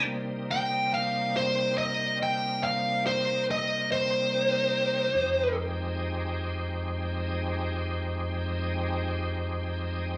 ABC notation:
X:1
M:12/8
L:1/8
Q:3/8=47
K:Cm
V:1 name="Lead electric guitar"
z g f c e g f c e c3- | c z8 z3 |]
V:2 name="Tonewheel organ"
[C,G,B,CE]12 | [F,,A,CEG]12 |]